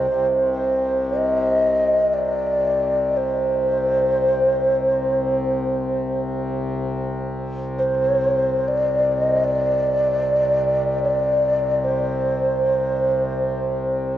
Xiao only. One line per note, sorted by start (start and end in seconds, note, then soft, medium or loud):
0.00 0.51 C5 medium
0.52 1.19 C5 medium
1.17 2.15 D#5 medium
2.14 3.18 D5 medium
3.17 6.20 C5 medium
7.79 8.69 C5 medium
8.68 9.14 D5 medium
9.12 9.45 D#5 medium
9.44 11.02 D5 medium
11.02 11.86 D5 medium
11.84 14.15 C5 medium